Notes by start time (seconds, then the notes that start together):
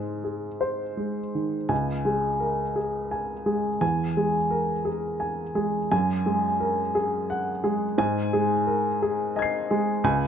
Already playing: G#2 G#3
0.24 G#4
0.61 C5
0.97 G#3
1.35 D#3
1.69 C#2 G#5
2.05 G#3 G#4
2.40 A#4
2.76 G#4
3.11 G#5
3.46 G#3 G#4
3.81 E2 G#5
4.17 G#3 G#4
4.50 A#4
4.85 G#4
5.20 G#5
5.55 G#3 G#4
5.92 F#2 G#5
6.26 G#3 G#4
6.60 A#4
6.95 G#4
7.30 F#5
7.64 G#3 G#4
7.98 G#2 G#5
8.33 G#3 G#4
8.66 A#4
9.02 G#4
9.36 D#5 G#5 G#6
9.42 C7
9.71 G#3 G#4
10.04 C#2 G#5